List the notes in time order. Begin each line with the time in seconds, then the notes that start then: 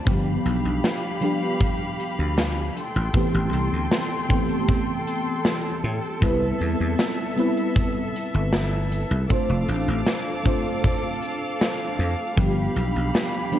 0.05 G1 F3 G3 B3 D4 G4 F5 B5, kick, closed hi-hat
0.45 B1, closed hi-hat
0.65 B1
0.84 snare, closed hi-hat
1.21 F3 G3 B3 D4 G4, closed hi-hat
1.43 closed hi-hat
1.61 kick, closed hi-hat
2.00 closed hi-hat
2.19 D2
2.37 snare, closed hi-hat
2.76 A4 G5 C6, closed hi-hat
2.96 A1
3.13 E3 A3 B3 C4 G4, kick, closed hi-hat
3.34 A1
3.53 C2, closed hi-hat
3.73 D2
3.91 snare, closed hi-hat
4.28 E3 A3 B3 C4 G4, kick, closed hi-hat
4.49 closed hi-hat
4.68 kick, closed hi-hat
5.07 closed hi-hat
5.45 snare, closed hi-hat
5.84 A2, closed hi-hat
6.20 C2 G3 B3 C4 E4 B4 E5, kick, closed hi-hat
6.61 E2, closed hi-hat
6.80 E2
6.99 snare, closed hi-hat
7.36 G3 B3 C4 E4 B4, closed hi-hat
7.57 closed hi-hat
7.76 kick, closed hi-hat
8.16 closed hi-hat
8.34 G1
8.53 snare, closed hi-hat
8.92 closed hi-hat
9.11 C2
9.28 A3 C4 D4 F4 A4 C5 F5 D6, kick, closed hi-hat
9.49 F1
9.68 A1, closed hi-hat
9.88 A1
10.07 snare, closed hi-hat
10.44 A3 C4 D4 F4 C5, kick, closed hi-hat
10.65 closed hi-hat
10.84 kick, closed hi-hat
11.23 closed hi-hat
11.61 snare, closed hi-hat
11.99 F2, closed hi-hat
12.36 G1 F3 G3 B3 D4 G4 B5, kick, closed hi-hat
12.76 B1, closed hi-hat
12.96 B1
13.14 snare, closed hi-hat
13.51 F3 G3 B3 D4 G4, closed hi-hat